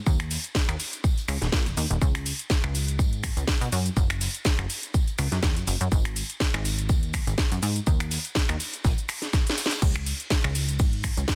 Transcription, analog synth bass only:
0.07 0.37 D#2 loud
0.68 0.76 D#2 loud
1.28 1.38 C#2 loud
1.42 1.49 D#1 loud
1.53 1.68 A#2 medium
1.66 1.74 D#1 medium
1.77 1.86 D#2 medium
1.90 1.98 D#1 medium
2.02 2.33 C#2 medium
2.64 3.01 C#2 loud
2.99 3.30 G#2 loud
3.37 3.44 C#2 medium
3.61 3.69 B2 medium
3.72 3.90 F#2 medium
3.97 4.28 F#1 loud
4.59 4.66 F#1 loud
5.19 5.28 C#2 loud
5.32 5.40 F#2 medium
5.43 5.58 D#2 medium
5.56 5.64 F#2 medium
5.67 5.77 F#1 medium
5.81 5.88 F#2 medium
5.92 6.23 G#1 loud
6.54 6.91 G#1 loud
6.89 7.20 D#2 loud
7.27 7.35 G#1 medium
7.52 7.59 F#2 medium
7.63 7.80 G#2 medium
7.87 8.18 D#2 loud
8.49 8.57 D#2 loud
8.85 8.94 A#1 loud
9.82 10.13 C#2 loud
10.44 10.81 C#2 loud
10.80 11.11 G#2 loud
11.17 11.25 C#2 medium

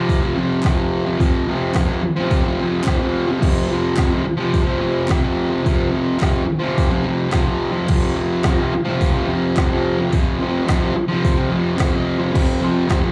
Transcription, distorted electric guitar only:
0.00 0.23 C3 medium
0.00 0.20 F3 medium
0.21 0.36 C3 medium
0.21 0.38 F3 medium
0.35 0.62 F2 medium
0.35 0.64 C3 medium
0.35 0.66 F3 medium
0.62 1.19 F2 medium
0.62 0.78 C3 loud
0.66 0.75 F3 loud
0.75 1.07 C3 medium
0.75 1.05 F3 medium
1.05 1.19 C3 medium
1.05 1.21 F3 medium
1.19 1.46 F2 medium
1.19 1.47 C3 loud
1.19 1.49 F3 loud
1.47 1.72 F2 medium
1.47 1.73 C3 medium
1.47 1.75 F3 medium
1.72 2.02 F2 medium
1.72 1.88 C3 medium
1.72 1.86 F3 medium
1.87 2.02 C3 medium
1.87 2.03 F3 medium
2.03 muted distorted electric guitar stroke soft
2.16 2.45 C3 medium
2.16 2.43 F3 medium
2.44 2.59 C3 medium
2.44 2.61 F3 medium
2.58 2.83 F2 medium
2.58 2.84 C3 medium
2.58 2.87 F3 medium
2.83 3.40 F2 loud
2.83 3.01 C3 loud
2.83 2.98 F3 loud
2.99 3.30 C3 medium
2.99 3.27 F3 medium
3.28 3.41 C3 medium
3.28 3.43 F3 medium
3.40 3.68 F2 medium
3.40 3.69 C3 loud
3.40 3.71 F3 loud
3.68 3.96 F2 medium
3.68 3.97 C3 medium
3.68 3.99 F3 medium
3.96 4.24 F2 medium
3.96 4.13 C3 medium
3.96 4.10 F3 medium
4.10 4.24 C3 medium
4.10 4.26 F3 medium
4.24 muted distorted electric guitar stroke soft
4.37 4.65 C3 medium
4.37 4.62 F3 medium
4.63 4.78 C3 medium
4.63 4.81 F3 medium
4.78 5.07 F2 medium
4.78 5.07 C3 medium
4.78 5.09 F3 medium
5.07 5.63 F2 medium
5.07 5.23 C3 loud
5.07 5.21 F3 loud
5.22 5.52 C3 medium
5.22 5.50 F3 medium
5.51 5.64 C3 medium
5.51 5.67 F3 medium
5.63 5.90 F2 medium
5.63 5.91 C3 loud
5.63 5.93 F3 loud
5.90 6.19 F2 medium
5.90 6.19 C3 medium
5.90 6.22 F3 medium
6.19 6.45 F2 medium
6.19 6.34 C3 medium
6.19 6.31 F3 medium
6.32 6.44 C3 medium
6.32 6.45 F3 medium
6.45 muted distorted electric guitar stroke soft
6.59 6.90 C3 medium
6.59 6.89 F3 medium
6.89 7.04 C3 medium
6.89 7.06 F3 medium
7.03 7.29 F2 medium
7.03 7.30 C3 medium
7.03 7.32 F3 medium
7.29 7.85 F2 medium
7.29 7.47 C3 loud
7.29 7.44 F3 loud
7.44 7.72 F3 medium
7.49 7.74 C3 medium
7.72 7.86 C3 medium
7.72 7.90 F3 medium
7.85 8.15 F2 medium
7.85 8.16 C3 medium
7.90 8.18 F3 medium
8.15 8.43 F2 medium
8.15 8.45 C3 medium
8.15 8.47 F3 medium
8.44 8.72 F2 medium
8.44 8.60 C3 medium
8.48 8.57 F3 medium
8.58 8.72 C3 medium
8.58 8.74 F3 medium
8.72 muted distorted electric guitar stroke soft
8.84 9.15 C3 medium
8.84 9.13 F3 medium
9.13 9.27 C3 medium
9.13 9.30 F3 medium
9.26 9.55 F2 medium
9.26 9.55 C3 medium
9.30 9.58 F3 medium
9.56 10.10 F2 medium
9.56 9.73 C3 loud
9.56 9.70 F3 loud
9.70 9.99 C3 medium
9.70 9.98 F3 medium
9.98 10.11 C3 medium
9.98 10.15 F3 medium
10.11 10.38 F2 medium
10.11 10.40 C3 medium
10.15 10.42 F3 loud
10.39 10.66 F2 medium
10.39 10.67 C3 medium
10.39 10.69 F3 medium
10.66 10.94 F2 medium
10.66 10.82 C3 loud
10.66 10.79 F3 medium
10.80 10.93 C3 medium
10.80 10.96 F3 medium
10.94 muted distorted electric guitar stroke soft
11.08 11.36 C3 medium
11.08 11.33 F3 medium
11.34 11.51 C3 medium
11.34 11.52 F3 medium
11.50 11.76 F2 medium
11.50 11.77 C3 medium
11.50 11.79 F3 medium
11.77 12.32 F2 loud
11.77 11.94 C3 loud
11.77 11.91 F3 loud
11.92 12.20 C3 medium
11.92 12.18 F3 medium
12.19 12.33 C3 medium
12.19 12.35 F3 medium
12.33 12.60 F2 medium
12.33 12.61 C3 loud
12.33 12.64 F3 loud
12.61 12.87 F2 medium
12.61 12.88 C3 medium
12.61 12.90 F3 medium
12.87 13.12 F2 medium
12.87 13.03 C3 medium
12.87 13.00 F3 medium
13.00 13.12 C3 medium
13.00 13.12 F3 medium

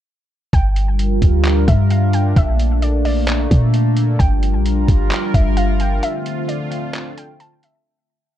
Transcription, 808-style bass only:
0.53 1.19 G1 loud
1.22 1.66 D2 loud
1.68 2.34 G2 loud
2.36 3.47 A#1 loud
3.51 4.17 A#2 loud
4.20 4.56 G1 loud
4.54 4.87 A#1 loud
4.88 5.10 G1 loud
5.34 6.00 G1 loud

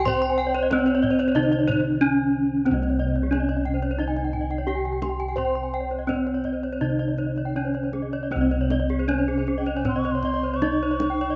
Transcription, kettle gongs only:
0.00 1.34 C2 loud
0.06 1.97 C5 medium
0.71 0.79 C#4 soft
1.35 3.28 C3 medium
2.02 2.10 C#4 soft
2.66 4.64 C4 medium
2.71 6.80 C2 loud
3.31 3.39 C#4 medium
4.67 4.75 C#4 soft
5.36 7.51 C5 medium
6.09 6.17 C#4 medium
6.81 9.05 C3 medium
7.55 7.63 C#4 soft
8.31 10.58 C4 medium
8.36 11.36 C2 loud
9.09 9.17 C#4 soft
10.63 10.71 C#4 soft

